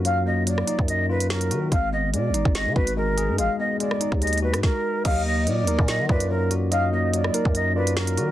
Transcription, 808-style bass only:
X:1
M:4/4
L:1/16
Q:1/4=144
K:Ebm
V:1 name="808-style bass" clef=bass
G,,6 z G,,6- G,, E,2 | A,,,4 C,3/2 A,,,3/2 A,,,2 E, A,,,4- A,,, A,, | A,,, z6 E,,4 A,, z4 | E,,4 B,,3/2 E,,3/2 B,,2 E, G,,6- |
G,,6 z G,,6- G,, E,2 |]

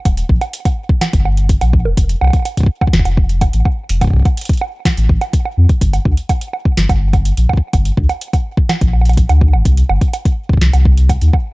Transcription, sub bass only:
X:1
M:4/4
L:1/16
Q:1/4=125
K:Gm
V:1 name="Sub bass" clef=bass
E,,, z B,,, z6 G,,,4 B,,,2 E,,, | F,,, z C,, z4 z F,,, F,,,4 A,,, z2 | F,,, z C,, z6 A,,, A,,, z3 F,, z | G,,, z D,, z4 z G,,, G,,,4 B,,, z2 |
G,,, z D,, z6 B,,,4 D,,2 G,,, | C,, z G,,, z4 z C,, C,,4 E,, z2 |]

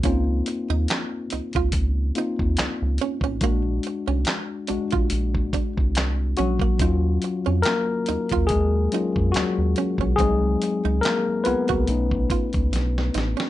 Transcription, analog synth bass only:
X:1
M:4/4
L:1/16
Q:"Swing 16ths" 1/4=71
K:Bbm
V:1 name="Analog synth bass" clef=bass
D,,2 z E,, z2 D,, D,, D,,2 z E,, D,, D,, z =A,,, | B,,,2 z C,, z2 B,,, B,,, B,,,2 z C,,3 B,,,2 | E,,2 z F,, z2 E,, E,, E,,2 z F,, E,, E,, z _C,, | C,,2 z D,, z2 C,, C,, =B,,,2 z ^C,, B,,,2 =A,,, z |]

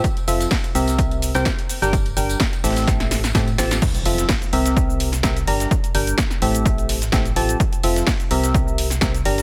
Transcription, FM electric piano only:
X:1
M:4/4
L:1/16
Q:"Swing 16ths" 1/4=127
K:F
V:1 name="FM electric piano"
z2 [F,CFAe]2 z2 [C,CGBe]4- [C,CGBe] [C,CGBg] z3 [G,DGBg] | z2 [G,DGBg]2 z2 [A,,CGAe]4- [A,,CGAe] z [A,,CGAe] z [F,CGAa]2 | z2 [F,CFAe]2 z2 [C,CGBe]4- [C,CGBe] z [CGBe] z [G,DGBb]2 | z2 [G,DGBg]2 z2 [A,,CGAe]4- [A,,CGAe] z [A,,CGAe] z [F,CGAa]2 |
z2 [F,CFAe]2 z2 [C,CGBe]4- [C,CGBe] z [CGBe] z [G,DGBb]2 |]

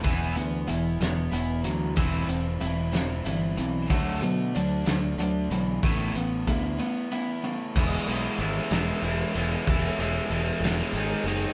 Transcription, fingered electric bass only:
X:1
M:6/8
L:1/8
Q:3/8=62
K:Emix
V:1 name="Fingered electric bass" clef=bass
E,,, D,, E,,, E,,, E,,, D,, | E,,, E,,, E,,,2 =G,,, B,,, | D,, B,, D,, D,, D,, B,,, | A,,, A,,, D,, z3 |
E,,, B,,, G,,, E,,, E,,, E,,, | E,,, E,,, E,,, E,,, G,,, F,,, |]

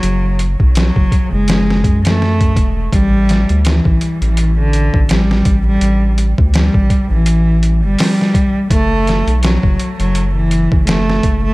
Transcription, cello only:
X:1
M:4/4
L:1/16
Q:"Swing 16ths" 1/4=83
K:Gdor
V:1 name="Cello" clef=bass
^F,2 z2 F,3 ^G,4 A,4 z | G,4 E,3 E,2 D,3 G,3 G,- | G,2 z2 G,3 E,4 G,4 z | A,4 ^F,3 F,2 E,3 A,3 A, |]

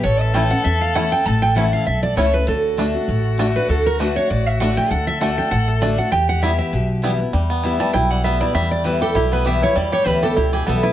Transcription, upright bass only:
X:1
M:4/4
L:1/8
Q:"Swing" 1/4=198
K:Edor
V:1 name="Upright bass" clef=bass
A,,,4 E,,4 | A,,,4 B,,,2 C,,2 | D,,4 A,,,4 | D,,4 A,,,4 |
D,,4 A,,,4 | E,,4 B,,,4 | E,,4 B,,,4 | E,,4 B,,,4 |
E,,2 D,,2 C,,2 B,,,2 |]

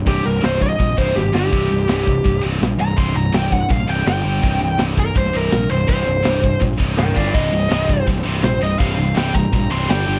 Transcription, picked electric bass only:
X:1
M:4/4
L:1/8
Q:1/4=165
K:Cm
V:1 name="Picked electric bass" clef=bass
C,,, C,,, C,,,2 B,,, C,,, A,,, G,,, | C,,, C,,, C,,,2 C,,, C,,, B,,, C,,, | C,,, C,,, C,,,2 B,,, C,,, G,,, G,,, | C,,, C,,, C,,,2 C,,, C,,, B,,, C,,, |
C,,, C,,, C,,,2 B,,, C,,, C,,, G,,, | C,,, C,,, C,,,2 C,,, C,,, B,,, C,,, | C,,, C,,, C,,,2 B,,, C,,, G,,, G,,, |]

